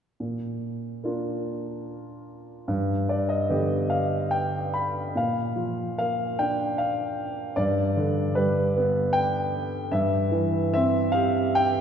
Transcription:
0.20 2.66 A#2 soft
1.04 2.65 A#3 soft
1.04 2.65 D4 soft
1.04 2.66 F4 soft
2.68 5.10 G2 soft
3.09 3.28 D5 soft
3.29 3.85 D#5 medium
3.49 5.12 D3 soft
3.49 5.11 B3 soft
3.49 5.12 G4 soft
3.90 4.28 F5 soft
4.31 4.70 G5 medium
4.74 5.12 B5 medium
5.15 7.53 A#2 soft
5.15 5.97 F5 medium
5.56 7.14 F3 soft
5.98 7.53 A#3 soft
5.98 6.40 F5 medium
6.39 7.54 D4 soft
6.39 6.80 G5 medium
6.78 7.59 F5 medium
7.56 9.87 G2 soft
7.56 8.37 D5 medium
7.97 9.48 D3 soft
8.35 9.87 G3 soft
8.35 9.09 B4 medium
8.76 9.89 B3 soft
9.13 9.87 G5 medium
9.91 11.81 G2 soft
9.91 10.72 E5 medium
10.31 11.81 E3 soft
10.73 11.81 C4 soft
10.73 11.15 E5 medium
11.12 11.81 G4 soft
11.12 11.56 F5 medium
11.55 11.81 G5 medium

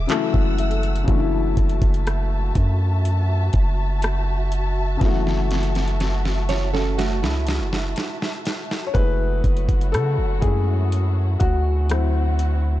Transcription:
0.07 1.02 C#3 medium
0.07 1.04 E3 medium
0.07 1.07 F#3 medium
0.07 1.09 A3 medium
0.07 1.07 A4 medium
0.07 1.07 F#5 medium
0.07 0.55 A5 medium
0.07 1.07 E6 medium
0.07 clap loud
0.07 closed hi-hat medium
0.12 1.09 E4 medium
0.34 1.05 F#1 loud
0.34 kick medium
0.58 1.04 E5 medium
0.58 closed hi-hat medium
0.58 open hi-hat medium
0.71 closed hi-hat medium
0.83 closed hi-hat medium
0.96 closed hi-hat medium
1.03 4.95 C#3 medium
1.03 4.96 E3 medium
1.08 1.55 F#1 loud
1.08 4.98 F#3 medium
1.08 4.99 A3 medium
1.08 8.91 F#4 medium
1.08 8.91 E5 medium
1.08 8.91 A5 medium
1.08 kick loud
1.08 closed hi-hat medium
1.13 1.17 D4 medium
1.20 5.03 E4 medium
1.57 1.81 F#1 loud
1.57 kick medium
1.57 closed hi-hat medium
1.69 closed hi-hat medium
1.82 2.53 F#1 loud
1.82 kick loud
1.82 closed hi-hat medium
1.94 closed hi-hat medium
2.07 cross-stick loud
2.07 closed hi-hat medium
2.55 3.50 F#2 loud
2.55 kick medium
2.55 closed hi-hat medium
3.05 closed hi-hat medium
3.53 4.97 F#1 loud
3.53 kick medium
3.53 closed hi-hat medium
4.02 cross-stick loud
4.02 closed hi-hat medium
4.52 closed hi-hat medium
4.97 8.89 C#3 medium
4.97 8.90 E3 medium
5.01 7.24 F#1 loud
5.01 8.91 F#3 medium
5.01 8.92 A3 medium
5.01 kick loud
5.01 snare medium
5.01 closed hi-hat medium
5.07 8.93 F#4 medium
5.27 snare soft
5.51 snare medium
5.51 closed hi-hat medium
5.63 closed hi-hat medium
5.75 snare medium
5.75 closed hi-hat medium
5.88 closed hi-hat medium
6.00 snare medium
6.00 closed hi-hat medium
6.25 snare medium
6.49 6.73 E4 medium
6.49 6.72 C#5 medium
6.49 snare medium
6.49 closed hi-hat medium
6.74 6.97 C#4 medium
6.74 6.97 A4 medium
6.74 snare medium
6.98 7.22 A3 medium
6.98 7.22 F#4 medium
6.98 snare medium
6.98 closed hi-hat medium
7.23 7.61 C#2 loud
7.23 8.67 G#3 medium
7.23 8.66 E4 medium
7.23 snare medium
7.47 snare medium
7.47 closed hi-hat medium
7.60 7.95 F#1 medium
7.73 snare medium
7.96 snare medium
7.96 closed hi-hat medium
8.22 snare medium
8.45 snare loud
8.45 closed hi-hat medium
8.71 snare medium
8.87 8.94 C#5 medium
8.94 9.42 F#1 loud
8.94 11.87 F#3 medium
8.94 10.38 A3 soft
8.94 11.87 E4 medium
8.94 10.39 E4 medium
8.94 11.87 F#4 medium
8.94 10.38 G#4 medium
8.94 9.96 B4 loud
8.94 kick loud
8.94 closed hi-hat medium
9.44 9.95 F#1 loud
9.44 kick medium
9.44 closed hi-hat medium
9.57 closed hi-hat medium
9.69 kick loud
9.69 closed hi-hat medium
9.81 closed hi-hat medium
9.92 10.19 C#3 medium
9.92 10.38 A4 medium
9.92 cross-stick loud
9.92 closed hi-hat medium
10.18 10.41 F#1 loud
10.41 11.37 F#2 loud
10.41 10.88 G#3 soft
10.41 10.88 A3 soft
10.41 10.88 E4 medium
10.41 11.43 G#4 loud
10.41 kick medium
10.41 closed hi-hat medium
10.92 closed hi-hat medium
11.40 12.80 D2 loud
11.40 12.80 F#4 loud
11.40 kick medium
11.40 closed hi-hat medium
11.89 12.80 D3 medium
11.89 12.80 F#3 medium
11.89 12.80 C4 medium
11.89 12.80 C4 soft
11.89 12.80 E4 medium
11.89 12.80 F#4 medium
11.89 cross-stick loud
11.89 closed hi-hat medium
12.39 closed hi-hat medium

